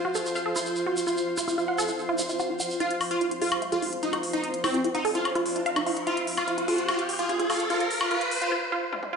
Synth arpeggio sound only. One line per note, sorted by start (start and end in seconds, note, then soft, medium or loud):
0.05 0.15 F#4 medium
0.15 0.19 A4 medium
0.35 0.40 F5 medium
0.46 0.53 A4 medium
0.56 0.63 F4 medium
0.86 0.96 F#4 medium
1.07 1.14 F4 medium
1.37 1.44 F4 medium
1.48 1.57 F4 medium
1.58 1.62 F4 medium
1.68 1.75 F#5 medium
1.78 1.85 A4 loud
1.89 1.95 F4 medium
2.09 2.13 F4 loud
2.19 2.26 F4 medium
2.29 2.33 F5 medium
2.40 2.46 F#4 medium
2.50 2.57 F4 medium
2.60 2.64 F#5 medium
2.80 2.87 F4 medium
3.21 3.31 F4 medium
3.31 3.41 F#4 medium
3.42 3.46 A4 medium
3.62 3.66 F5 medium
3.72 3.79 A4 medium
3.82 3.89 F4 medium
4.13 4.23 F#4 medium
4.33 4.40 F4 medium
4.64 4.71 F4 medium
4.74 4.83 F4 medium
4.84 4.89 F4 medium
4.95 5.02 F#5 medium
5.05 5.12 A4 loud
5.15 5.22 F4 medium
5.35 5.40 F4 loud
5.56 5.66 F4 medium
5.66 5.70 F5 medium
5.76 5.83 D#4 medium
5.86 5.91 F4 medium
6.07 6.14 F4 medium
6.48 6.57 F4 medium
6.58 6.68 F4 medium
6.68 6.72 A4 medium
6.88 6.95 F4 medium
7.29 7.38 F4 medium
7.40 7.49 F4 medium
7.50 7.54 A4 medium
7.70 7.77 F4 medium
8.11 8.18 F4 medium
8.52 8.59 F4 medium
8.72 8.79 F4 medium
8.93 8.99 F4 medium
9.13 9.17 F4 medium